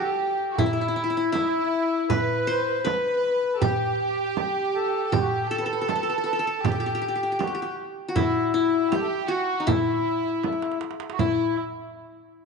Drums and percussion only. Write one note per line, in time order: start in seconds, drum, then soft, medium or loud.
0.40 darbuka ka soft
0.58 darbuka dum loud
0.58 frame drum medium
1.34 darbuka tek medium
1.34 frame drum medium
2.10 darbuka dum loud
2.10 frame drum medium
2.86 darbuka tek medium
2.86 frame drum medium
3.43 darbuka ka soft
3.62 frame drum medium
3.62 darbuka dum loud
4.37 darbuka tek medium
4.37 frame drum medium
5.13 darbuka dum medium
5.13 frame drum medium
5.89 darbuka tek medium
5.89 frame drum medium
6.46 darbuka ka soft
6.64 darbuka dum medium
6.64 frame drum medium
7.40 darbuka tek medium
7.40 frame drum medium
8.16 darbuka dum medium
8.16 frame drum medium
8.34 darbuka ka soft
8.92 darbuka tek medium
8.92 frame drum medium
9.68 darbuka dum loud
9.68 frame drum loud
10.25 darbuka ka soft
10.43 darbuka tek medium
10.43 frame drum medium
10.53 darbuka ka medium
10.62 darbuka tek medium
10.72 darbuka ka medium
10.81 darbuka tek medium
10.91 darbuka ka medium
11.00 darbuka tek medium
11.10 darbuka ka medium
11.19 frame drum medium
11.19 darbuka dum medium